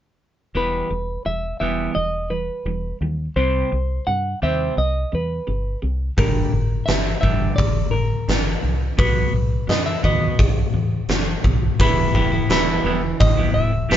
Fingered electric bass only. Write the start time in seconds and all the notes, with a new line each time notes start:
0.55 E1
0.90 E1
1.26 E1
1.61 E1
1.96 E1
2.65 E1
3.01 D#2
3.36 C2
3.72 C2
4.08 G2
4.43 D#2
4.77 C2
5.13 E2
5.48 G1
5.83 C2
6.18 G1
6.53 G1
6.88 G1
7.23 G1
7.58 G1
8.28 G1
8.63 C2
8.98 B1
9.33 B1
9.68 F#2
10.04 D#2
10.39 B1
10.74 E2
11.08 F#1
11.44 B1
11.79 E1
12.15 E1
12.49 E1
12.84 E1
13.21 A1
13.55 E1
13.90 E1